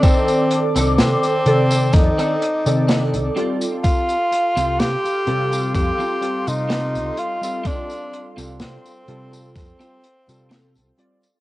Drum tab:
HH |xxxxxxxxxxxxxxxx|xxxxxxxxx-xxxxxx|xxxxxxxxxxxxxxxx|
TB |xx-xxx-xxx-xxx-x|xx-xxx-xxx-xxx-x|xx-xxx-xxx-xxx-x|
SD |----o---o---o---|----o-------o---|----o---o---o---|
BD |o-------o-------|o-------o-------|o-------o-------|